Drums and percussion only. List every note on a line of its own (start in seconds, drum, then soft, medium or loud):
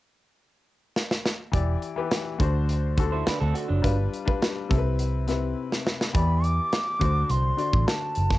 0.96 snare medium
1.11 snare medium
1.26 snare medium
1.54 kick medium
1.54 closed hi-hat medium
1.82 closed hi-hat medium
2.11 snare loud
2.11 closed hi-hat medium
2.40 kick medium
2.40 closed hi-hat medium
2.69 closed hi-hat medium
2.97 kick medium
2.97 closed hi-hat medium
3.27 snare medium
3.27 closed hi-hat medium
3.55 closed hi-hat medium
3.84 kick medium
3.84 closed hi-hat medium
4.14 closed hi-hat medium
4.28 kick medium
4.42 snare medium
4.42 closed hi-hat medium
4.71 kick medium
4.71 closed hi-hat medium
4.99 closed hi-hat medium
5.28 snare soft
5.28 closed hi-hat medium
5.72 snare medium
5.87 snare medium
6.01 snare medium
6.15 kick medium
6.15 closed hi-hat medium
6.44 closed hi-hat medium
6.72 snare medium
6.72 closed hi-hat medium
7.01 kick medium
7.01 closed hi-hat medium
7.30 closed hi-hat medium
7.58 closed hi-hat medium
7.73 kick medium
7.88 snare medium
7.88 closed hi-hat medium
8.15 closed hi-hat medium
8.30 kick medium
8.30 snare soft